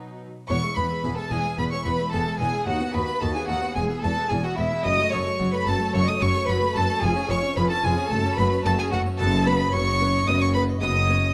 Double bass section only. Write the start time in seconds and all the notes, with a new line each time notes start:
0.50 E1
0.77 E1
1.04 E1
1.31 E1
1.58 E1
1.86 E1
2.13 E1
2.40 E1
2.67 D#2
2.95 D#2
3.22 D#2
3.49 D#2
3.77 E1
4.04 E1
4.32 E1
4.59 E1
4.85 F#1
5.13 F#1
5.40 F#1
5.67 F#1
5.94 F#1
6.21 F#1
6.48 F#1
6.76 F#1
7.03 F1
7.30 F1
7.56 F1
7.84 F1
8.11 F#1
8.38 F#1
8.65 F#1
8.93 F#1
9.19 F#1
9.74 F#1
10.28 F#1
10.82 F#1